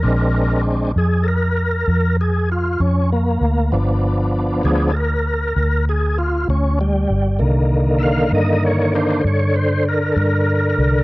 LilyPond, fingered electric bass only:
\new Staff \with { instrumentName = "Fingered electric bass" } { \clef bass \time 12/8 \key bes \mixolydian \tempo 4. = 65 bes,,4. f,4. f,4. f,4 d,8 | g,,4. d,4. d,4. d,4 g,,8 | c,4. g,4. g,4. g,4 c,8 | }